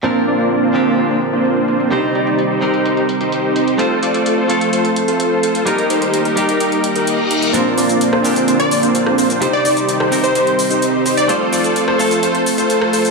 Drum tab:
HH |--x-x-xxxxxxx-xx|x-xxx-xxxxxxx-xx|x-xxx-xxxxxxx-xx|xxxxxxxxxxxxx-xx|
SH |----------------|----------------|----------------|----------------|
SD |----------------|----------------|----------------|----------------|

HH |x-oxx-oxxxoxx-ox|x-oxx-oxxxoxx-ox|x-oxx-oxxxoxx-ox|
SH |x-xxx-xxx-xxx-xx|x-xxx-xxx-xxx-xx|x-xxx-xxx-xxx-xx|
SD |-----r-------r--|-----r----------|-----r-------r--|